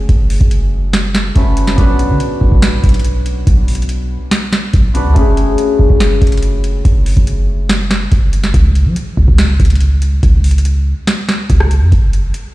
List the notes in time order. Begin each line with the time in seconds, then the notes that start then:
Already playing: A3 C#4 F#4 G#4
0.09 F#1, kick, closed hi-hat
0.30 closed hi-hat, open hi-hat
0.41 F#1, kick, closed hi-hat
0.51 closed hi-hat
0.93 snare, closed hi-hat
1.15 snare
1.35 F#1 A3 C#4 F#4 B4, kick, closed hi-hat
1.57 closed hi-hat
1.67 snare
1.75 B1 B3 D4 F#4, kick, closed hi-hat
1.81 B4
1.99 closed hi-hat
2.10 D3
2.20 closed hi-hat
2.41 B1, kick
2.52 B1, kick
2.62 snare, closed hi-hat
2.84 B1, kick, closed hi-hat
2.89 closed hi-hat
2.94 closed hi-hat
2.99 closed hi-hat
3.05 closed hi-hat
3.26 closed hi-hat
3.47 B1, kick, closed hi-hat
3.68 closed hi-hat, open hi-hat
3.75 closed hi-hat
3.82 closed hi-hat
3.89 closed hi-hat
4.31 snare, closed hi-hat
4.53 snare
4.73 B1, kick, closed hi-hat
4.94 B3 D4 F#4 B4, closed hi-hat
5.05 D2
5.13 F#1 A3 C#4 F#4, kick, closed hi-hat
5.19 G#4
5.37 closed hi-hat
5.58 closed hi-hat
5.79 F#1, kick
5.90 F#1, kick
6.00 snare, closed hi-hat
6.22 F#1, kick, closed hi-hat
6.27 closed hi-hat
6.32 closed hi-hat
6.37 closed hi-hat
6.43 closed hi-hat
6.64 closed hi-hat
6.85 F#1, kick, closed hi-hat
7.06 closed hi-hat, open hi-hat
7.17 F#1, kick, closed hi-hat
7.27 closed hi-hat
7.69 snare, closed hi-hat
7.91 snare
8.12 F#1, kick, closed hi-hat
8.33 closed hi-hat
8.44 snare
8.54 C#2, kick, closed hi-hat
8.75 closed hi-hat
8.86 F3
8.96 closed hi-hat
9.17 C#2, kick
9.28 C#2, kick
9.38 snare, closed hi-hat
9.60 C#2, kick, closed hi-hat
9.65 closed hi-hat
9.70 closed hi-hat
9.75 closed hi-hat
9.81 closed hi-hat
10.02 closed hi-hat
10.23 C#2, kick, closed hi-hat
10.44 closed hi-hat, open hi-hat
10.51 closed hi-hat
10.58 closed hi-hat
10.65 closed hi-hat
11.07 snare, closed hi-hat
11.29 snare
11.50 C#2, kick, closed hi-hat
11.60 cross-stick
11.71 closed hi-hat
11.82 F2
11.92 F#1, kick, closed hi-hat
12.13 closed hi-hat
12.34 closed hi-hat